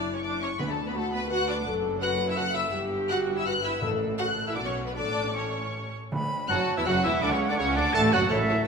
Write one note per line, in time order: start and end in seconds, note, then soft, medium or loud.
0.00 0.57 F#1 medium
0.00 0.56 F#2 medium
0.00 0.13 D4 medium
0.00 0.55 E4 medium
0.00 0.13 D5 medium
0.15 0.18 C#4 medium
0.15 0.23 C#5 medium
0.15 0.23 C#6 medium
0.23 0.41 D4 medium
0.23 0.30 D5 medium
0.23 0.41 D6 loud
0.40 0.49 C#4 medium
0.40 0.49 C#5 medium
0.40 0.58 C#6 loud
0.59 1.64 D2 medium
0.59 1.09 D3 medium
0.59 0.63 B3 loud
0.59 0.95 D4 medium
0.59 0.63 B4 medium
0.59 0.68 B5 loud
0.68 0.75 A3 medium
0.68 0.86 A4 medium
0.68 0.87 A5 medium
0.86 0.94 B3 medium
0.86 0.89 B4 medium
0.86 0.95 B5 medium
0.94 1.12 A3 medium
0.94 1.29 F#4 medium
0.94 1.12 A4 medium
0.94 1.12 A5 loud
1.12 1.19 B3 medium
1.12 1.30 B4 medium
1.12 1.29 B5 loud
1.29 1.48 F#4 loud
1.29 1.65 B4 medium
1.29 1.48 F#5 medium
1.29 1.48 F#6 loud
1.47 1.66 D4 medium
1.47 1.56 D5 medium
1.47 1.67 D6 loud
1.66 2.73 F#1 medium
1.66 2.73 F#2 medium
1.66 2.02 A4 loud
2.01 2.27 F#4 medium
2.01 2.37 B4 loud
2.01 2.27 F#5 loud
2.01 2.11 F#6 loud
2.29 2.32 E4 medium
2.29 2.38 E5 medium
2.29 2.38 E6 loud
2.36 2.45 F#4 loud
2.36 2.73 A4 medium
2.36 2.56 F#5 loud
2.36 2.55 F#6 loud
2.55 2.73 E4 medium
2.55 2.74 E5 medium
2.55 2.73 E6 loud
2.71 3.80 G1 medium
2.71 3.79 G2 loud
2.71 3.44 G4 loud
3.09 3.35 F#4 medium
3.09 3.18 F#5 medium
3.09 3.17 F#6 loud
3.37 3.46 E4 medium
3.37 3.46 E5 medium
3.37 3.46 E6 loud
3.46 3.53 F#4 loud
3.46 3.82 B4 medium
3.46 3.53 F#5 loud
3.46 3.64 F#6 loud
3.64 3.82 E4 medium
3.64 3.82 E5 medium
3.64 3.82 E6 loud
3.81 4.53 A1 medium
3.81 4.52 A2 medium
3.81 4.34 A2 loud
3.81 4.18 A4 loud
4.19 4.27 F#4 loud
4.19 4.56 A4 medium
4.19 4.27 F#5 loud
4.19 4.45 F#6 loud
4.47 4.57 E4 medium
4.47 4.57 E5 medium
4.47 4.57 E6 medium
4.55 4.95 B1 medium
4.55 4.95 B2 medium
4.55 4.66 D4 medium
4.55 4.94 F#4 medium
4.55 4.66 D5 medium
4.55 4.59 D6 loud
4.65 4.86 C#4 medium
4.65 4.86 C#5 medium
4.65 4.73 C#6 loud
4.86 4.96 B3 medium
4.86 4.95 B4 medium
4.86 4.90 B5 medium
4.94 5.93 A1 medium
4.94 5.92 A2 medium
4.94 5.35 D4 loud
4.94 5.93 A4 medium
4.94 5.34 D5 loud
4.94 5.34 D6 loud
5.34 5.92 C#4 medium
5.34 5.92 C#5 medium
5.34 5.93 C#6 medium
6.12 6.64 D3 loud
6.12 6.52 B5 loud
6.48 6.58 F#1 loud
6.48 6.57 F#2 medium
6.48 6.79 F#3 loud
6.48 6.62 F#3 medium
6.48 6.75 F#4 loud
6.48 6.76 F#4 loud
6.48 6.62 F#5 medium
6.48 6.88 A5 medium
6.48 6.56 F#6 loud
6.76 6.86 E2 medium
6.76 6.81 E3 medium
6.76 6.89 E3 medium
6.76 6.86 E4 medium
6.76 6.81 E4 medium
6.76 6.88 E5 medium
6.76 6.81 E5 medium
6.76 6.86 E6 loud
6.86 7.04 F#1 loud
6.86 7.04 F#2 loud
6.86 7.03 F#3 loud
6.86 7.05 F#3 loud
6.86 6.94 F#4 loud
6.86 7.04 F#4 loud
6.86 6.94 F#4 loud
6.86 6.95 F#5 loud
6.86 8.30 F#5 loud
6.86 7.03 F#5 loud
6.86 7.04 F#6 loud
7.03 7.22 E1 loud
7.03 7.22 E2 medium
7.03 7.21 E3 loud
7.03 7.22 E3 loud
7.03 7.12 E4 medium
7.03 7.22 E4 loud
7.03 7.25 E5 medium
7.03 7.24 E5 loud
7.03 7.12 E6 loud
7.21 7.31 D2 loud
7.21 7.31 D3 loud
7.21 7.31 D4 loud
7.21 7.27 D4 loud
7.21 7.32 D4 loud
7.21 7.31 D5 loud
7.21 7.34 D5 loud
7.21 7.30 D6 loud
7.31 7.49 C#2 medium
7.31 7.49 C#3 medium
7.31 7.49 C#4 medium
7.31 7.41 C#4 medium
7.31 7.40 C#5 medium
7.31 7.49 C#5 medium
7.31 7.39 C#6 loud
7.48 7.53 D2 medium
7.48 7.58 D3 medium
7.48 7.53 D4 medium
7.48 7.59 D4 medium
7.48 7.60 D5 medium
7.48 7.54 D5 medium
7.48 7.58 D6 loud
7.57 7.76 C#2 medium
7.57 7.76 C#2 loud
7.57 7.76 C#3 loud
7.57 7.67 C#3 loud
7.57 7.76 C#4 loud
7.57 7.76 C#4 medium
7.57 7.80 C#4 loud
7.57 7.78 C#5 loud
7.57 7.67 C#5 loud
7.57 7.75 C#6 loud
7.76 7.94 D2 loud
7.76 7.96 D3 loud
7.76 7.85 D3 loud
7.76 7.94 D4 loud
7.76 7.85 D5 loud
7.76 7.95 D5 loud
7.76 7.94 D6 loud
7.94 8.12 A1 loud
7.94 8.12 A2 loud
7.94 8.12 A3 loud
7.94 8.01 A4 loud
7.94 8.12 A4 loud
7.94 8.16 A4 loud
7.94 8.15 A5 loud
7.94 8.02 A5 loud
7.94 8.12 A6 loud
8.11 8.30 F#1 loud
8.11 8.30 F#2 loud
8.11 8.20 F#3 loud
8.11 8.21 F#3 loud
8.11 8.29 F#4 loud
8.11 8.30 F#4 loud
8.11 8.31 F#4 loud
8.11 8.30 F#5 loud
8.11 8.31 F#5 loud
8.11 8.20 F#6 loud
8.29 8.63 A1 loud
8.29 8.62 A2 loud
8.29 8.67 A2 loud
8.29 8.64 A3 medium
8.29 8.38 A3 medium
8.29 8.65 C#4 medium
8.29 8.38 E4 medium
8.29 8.66 E4 medium
8.29 8.36 A4 medium
8.29 8.64 A4 medium
8.29 8.36 C#5 medium
8.29 8.65 C#5 medium
8.29 8.66 E5 loud
8.29 8.65 E5 medium
8.49 8.56 A3 medium
8.49 8.56 E4 medium
8.49 8.56 A4 medium
8.49 8.56 C#5 medium